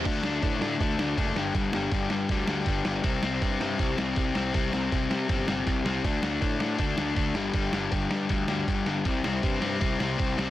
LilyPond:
<<
  \new Staff \with { instrumentName = "Overdriven electric guitar" } { \clef bass \time 4/4 \key c \lydian \tempo 4 = 160 <d a d'>8 <d a d'>8 <d a d'>8 <d a d'>8 <d a d'>8 <d a d'>8 <d a d'>8 <g, d g>8 | <g, d g>8 <g, d g>8 <g, d g>8 <g, d g>8 <g, d g>8 <g, d g>8 <g, d g>8 <g, d g>8 | <c g c'>8 <c g c'>8 <c g c'>8 <c g c'>8 <c g c'>8 <c g c'>8 <c g c'>8 <c g c'>8 | <c g c'>8 <c g c'>8 <c g c'>8 <c g c'>8 <c g c'>8 <c g c'>8 <c g c'>8 <c g c'>8 |
<d a d'>8 <d a d'>8 <d a d'>8 <d a d'>8 <d a d'>8 <d a d'>8 <d a d'>8 <g, d g>8 | <g, d g>8 <g, d g>8 <g, d g>8 <g, d g>8 <g, d g>8 <g, d g>8 <g, d g>8 <g, d g>8 | <c g c'>8 <c g c'>8 <c g c'>8 <c g c'>8 <c g c'>8 <c g c'>8 <c g c'>8 <c g c'>8 | }
  \new Staff \with { instrumentName = "Picked electric bass" } { \clef bass \time 4/4 \key c \lydian d,8 d,8 a,8 a,8 d,8 d,8 fis,,8 g,,8 | g,,8 g,,8 g,,8 g,8 d,8 d,8 g,,8 g,,8 | c,8 c,8 g,8 g,8 c,8 c,8 c,8 c,8 | c,8 c,8 c,8 c8 g,,8 g,,8 c,8 c,8 |
d,8 d,8 a,8 a,8 d,8 d,8 d,8 g,,8 | g,,8 g,,8 g,,8 g,8 d,8 d,8 g,,8 g,,8 | c,8 c,8 g,8 g,8 c,8 c,8 c,8 c,8 | }
  \new DrumStaff \with { instrumentName = "Drums" } \drummode { \time 4/4 <cymc hho bd>8 sn8 <hho bd>8 sn8 <hho bd>8 sn8 <hho bd>8 sn8 | <hho bd>8 sn8 <hho bd>8 sn8 <hho bd>8 sn8 <hho bd>8 sn8 | <hho bd>8 sn8 <hho bd>8 sn8 <hho bd>8 sn8 <hho bd>8 sn8 | <hho bd>8 sn8 <hho bd>8 sn8 <hho bd>8 sn8 <hho bd sn>8 sn8 |
<hho bd>8 sn8 <hho bd>8 sn8 <hho bd>8 sn8 <hho bd>8 sn8 | <hho bd>8 sn8 <hho bd>8 sn8 <hho bd>8 sn8 <hho bd>8 sn8 | <hho bd>8 sn8 <hho bd>8 sn8 <hho bd>8 sn8 <hho bd>8 sn8 | }
>>